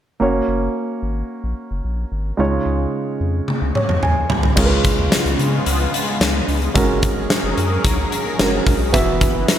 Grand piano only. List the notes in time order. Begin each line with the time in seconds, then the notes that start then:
0.20 A#3 C#4 F#4 C#5
2.37 C#3 G#3 D#4 F4 C#5
3.75 C#5
4.03 G#5
4.56 C#3 G#3 C#4 F4 A#4
4.65 B4
6.74 G#3 C#4 F#4 A#4
8.39 G#3 C#4 F#4 A#4
8.92 E3 B3 E4 F#4 E5